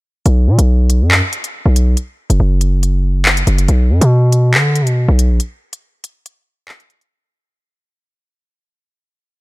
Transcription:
0.26 B1, closed hi-hat
0.47 B2
0.58 B1, closed hi-hat
0.90 closed hi-hat
1.01 F#2
1.11 clap
1.33 closed hi-hat
1.44 closed hi-hat
1.66 B1
1.76 closed hi-hat
1.97 closed hi-hat
2.30 F#1, closed hi-hat
2.40 F#1
2.61 closed hi-hat
2.83 closed hi-hat
3.26 clap
3.37 closed hi-hat
3.47 F#1, closed hi-hat
3.58 closed hi-hat
3.68 B1, closed hi-hat
3.90 F#2
4.01 B2, closed hi-hat
4.32 closed hi-hat
4.54 D3, clap
4.76 closed hi-hat
4.81 B2
4.87 closed hi-hat
5.08 B1
5.19 closed hi-hat
5.30 A#1
5.40 closed hi-hat
5.73 closed hi-hat
6.04 closed hi-hat
6.26 closed hi-hat
6.68 clap
6.80 closed hi-hat
6.90 closed hi-hat
7.01 closed hi-hat

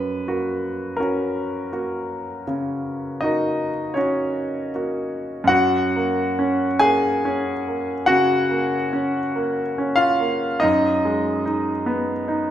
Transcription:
Already playing: F#2 B4
0.28 A#3 F#4
0.97 C#4 F#4 A#4
1.72 A#3 F#4
2.47 C#3
3.21 A#3 D#4 F#4 D#5
3.94 C#4 F#4 C#5
4.75 A#3 F#4
5.44 F#2 F#5
5.49 F#4
5.96 A#3
6.39 C#4
6.79 A#3 G#4 G#5
7.25 C#4
7.68 A#3
8.06 C#3 F#4 F#5
8.50 A#3
8.93 C#4
9.35 A#3
9.78 C#4
9.96 F4 F5
10.20 A#3
10.60 F#2 D#4 D#5
11.05 G#3
11.45 D#4
11.86 B3
12.28 D#4

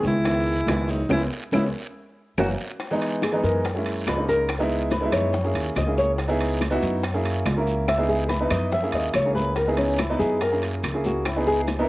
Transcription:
Already playing: D#3 G#3 B3 C#4
0.03 C#2 G#3, high bongo, short guiro, maracas
0.07 E4
0.24 D#3 G#3 B3 E4, high bongo, high conga, high timbale, long guiro, maracas
0.46 high conga, maracas
0.66 C#2 D#3 G#3 B3 E4, high bongo, low bongo, high conga, high timbale, low timbale, short guiro, claves, maracas
0.88 F#3 D#4, high bongo, high conga, short guiro, maracas
1.09 C#2 G#3 B3 C#4 E4, low bongo, high conga, high timbale, long guiro, claves, maracas
1.51 C#2 G#3 B3 C#4 E4, low bongo, high conga, high timbale, long guiro, claves, maracas
2.38 F#1 E3 F#3 A#3 F#4, low bongo, high conga, high timbale, long guiro, claves, maracas
2.80 high bongo, high conga, high timbale, long guiro, maracas
2.91 E3 G#3 B3 D#4
3.01 high bongo, high conga, high timbale, maracas
3.22 G#4, high bongo, high conga, high timbale, short guiro, claves, maracas
3.32 E3 G#3 B3 D#4
3.43 F#2 A#4, short guiro, maracas
3.64 high bongo, high conga, high timbale, long guiro, maracas
3.75 G#3 A#3 C#4 E4
3.85 high bongo, high conga, high timbale, maracas
4.06 C#2 B4, high bongo, low bongo, high timbale, low timbale, short guiro, claves, maracas
4.16 G#3 A#3 C#4 D#4
4.28 A#4, high bongo, short guiro, maracas
4.48 high bongo, high conga, high timbale, long guiro, claves, maracas
4.59 G#3 B3 D#4 E4
4.70 high bongo, high conga, maracas
4.91 B4, high bongo, high conga, high timbale, short guiro, maracas
5.01 G#3 B3 D#4 E4
5.12 F#2 C#5, high conga, low conga, high timbale, short guiro, claves, maracas
5.33 high bongo, high conga, low conga, long guiro, maracas
5.44 A#3 C#4 E4 G#4
5.54 D#2, high bongo, high conga, high timbale, maracas
5.75 C#2 D#5, high bongo, low bongo, high conga, high timbale, short guiro, claves, maracas
5.86 A#3 C#4 E4 G#4
5.97 C#5, high bongo, high conga, short guiro, maracas
6.18 high bongo, high conga, high timbale, long guiro, maracas
6.28 B3 D#4 E4 G#4
6.40 high bongo, high conga, high timbale, maracas
6.61 high bongo, high conga, high timbale, short guiro, claves, maracas
6.70 B3 D#4 E4 F#4
6.82 F#2, short guiro, maracas
7.03 high bongo, high conga, high timbale, long guiro, maracas
7.13 A#3 C#4 E4 G#4
7.25 high bongo, high conga, high timbale, maracas
7.46 C#2, high bongo, low bongo, high conga, high timbale, low timbale, short guiro, claves, maracas
7.56 A#3 C#4 E4 A#4
7.67 high bongo, short guiro, maracas
7.88 E5, high bongo, high conga, high timbale, long guiro, claves, maracas
7.98 B3 D#4 E4 G#4
8.09 G#4, high bongo, high conga, maracas
8.28 B4, high bongo, high conga, high timbale, short guiro, maracas
8.40 B3 D#4 E4 B4
8.50 F#2 D#5, high conga, low conga, high timbale, short guiro, claves, maracas
8.72 E5, high bongo, high conga, low conga, long guiro, maracas
8.82 A#3 C#4 E4 G#4
8.92 D#2 D#5, high bongo, high conga, high timbale, maracas
9.13 C#2 C#5, high bongo, low bongo, high conga, high timbale, short guiro, claves, maracas
9.25 A#3 C#4 E4 G#4
9.35 B4, high bongo, high conga, short guiro, maracas
9.56 A#4, high bongo, high conga, high timbale, long guiro, maracas
9.67 B3 D#4 E4 G#4
9.77 C#4, high bongo, high conga, high timbale, maracas
9.99 E4, high bongo, high conga, high timbale, short guiro, claves, maracas
10.10 B3 D#4 E4 B4
10.19 F#2 G#4, short guiro, maracas
10.41 A#4, high bongo, high conga, high timbale, long guiro, maracas
10.51 A#3 C#4 E4 G#4
10.62 high bongo, high conga, high timbale, maracas
10.83 C#2, high bongo, low bongo, high conga, high timbale, short guiro, claves, maracas
10.93 A#3 C#4 E4 G#4
11.04 F#4, high bongo, high conga, short guiro, maracas
11.25 E4, high bongo, high conga, high timbale, long guiro, claves, maracas
11.36 B3 D#4 E4 G#4
11.47 G#4, high bongo, high conga, maracas
11.67 high bongo, high conga, high timbale, short guiro, maracas
11.79 B3 D#4 E4 A#4

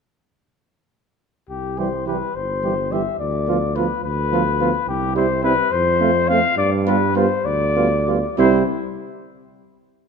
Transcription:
1.49 C2 G4
1.78 E3 G3 G4 C5
2.06 E3 G3 G4 B4
2.35 G1 C5
2.64 E3 G3 G4
2.91 E3 G3 G4 E5
3.20 D2 D5
3.48 F3 B3 F4
3.75 F3 B3 F4 B4
4.04 D2 B4
4.32 F3 B3 F4
4.60 F3 B3 F4
4.88 C2 G4
5.16 G3 C4 E4 C5
5.43 G3 C4 E4 B4
5.71 F2 C5
6.00 A3 C4 F4
6.28 A3 C4 F4 F5
6.58 G2 D5
6.86 G3 B3 F4 B4
7.16 G3 B3 F4 C5
7.45 D2 D5
7.76 G3 B3 F4
8.07 G3 B3 F4
8.38 C2 G3 C4 E4 C5

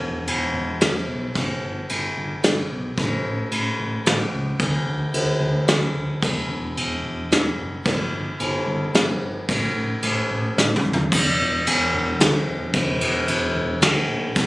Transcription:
0.00 E1
0.27 E1, ride
0.54 E1
0.81 E1, snare, ride
1.08 B1
1.35 G1, kick, ride
1.63 G1
1.89 G1, ride
2.17 G1
2.43 G1, snare, ride
2.72 B1
2.97 A1, kick, ride
3.25 A1
3.52 A1, ride
3.80 A1
4.06 A1, snare, ride
4.33 C#2
4.59 D2, kick, ride
4.86 D2
5.14 D2, ride
5.40 D2
5.68 D2, snare, ride
5.94 D2
6.23 E1, kick, ride
6.49 E1
6.76 E1, ride
7.03 E1
7.31 E1, snare, ride
7.57 F#1
7.86 G1, kick, ride
8.12 G1
8.40 G1, ride
8.66 G1
8.94 G1, snare, ride
9.22 G1
9.49 A1, kick, ride
9.76 A1
10.03 A1, ride
10.31 A1
10.57 A1, snare
10.76 mid tom
10.85 E2
10.93 floor tom
11.12 E1, kick, crash
11.40 E1
11.67 E1, ride
11.94 E1
12.20 D2, snare, ride
12.48 E1
12.74 E1, kick, ride
13.01 E1, ride
13.28 E1, ride
13.55 E1
13.81 D2, snare, ride
14.09 A#1
14.35 B1, kick, ride

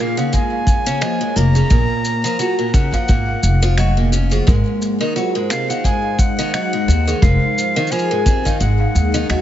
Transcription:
Already playing: A#3 F4 G#4 A#4
0.00 A#2 F5
0.17 C#3 F5 F#5, shaker
0.21 C#5
0.33 G#2 G#5, kick, shaker
0.52 F5
0.67 kick, shaker
0.86 C#3, shaker
1.01 F3 D#5, finger snap, shaker
1.21 G#2
1.36 F1 A#2 A#5, shaker
1.55 C#3 G#4, shaker
1.70 A#1 A#2 A#4, kick, shaker
2.05 shaker
2.20 F#5
2.24 F3 A#4, shaker
2.39 F#3 F4, shaker
2.59 A#2 A#4
2.74 C#3 F#5, kick, shaker
2.93 F3 F5, kick, shaker
3.08 G#1 A#2, kick, shaker
3.28 F5
3.43 F1, shaker
3.62 F3, shaker
3.78 F#3 D#5, finger snap, shaker
3.97 A#2
4.12 C#3, shaker
4.31 F3 G#4, shaker
4.46 G#1 G#2 G#3 A#4, kick, shaker
4.71 C5
4.77 D#4
4.82 shaker
5.01 D#3 A#4
5.16 F#3 F4, shaker
5.35 G#2 A#4
5.50 C3 F5, finger snap, shaker
5.69 D#3 F5 F#5, shaker
5.84 G#2 G#5, kick, shaker
6.04 F5
6.19 F#5, kick, shaker
6.39 D#3, shaker
6.53 F#3 D#5, finger snap, shaker
6.73 G#2
6.88 D#2 C3, shaker
7.07 D#3 G#4, shaker
7.22 F1 G#2 F3 A#4 F5, kick, shaker
7.58 shaker
7.66 G#4
7.76 D#3 A#4, shaker
7.86 F5, shaker
7.91 F3 F4 G#5, shaker
7.99 shaker
8.11 G#2 A#4
8.26 C3, kick, shaker
8.45 D#3 F5, kick, shaker
8.60 G#1 G#2 G#3 F#5, shaker
8.80 F5
8.95 D#2, shaker
9.14 D#3, shaker
9.23 F#4 C5
9.29 D#2 F#3 D#5, finger snap, shaker

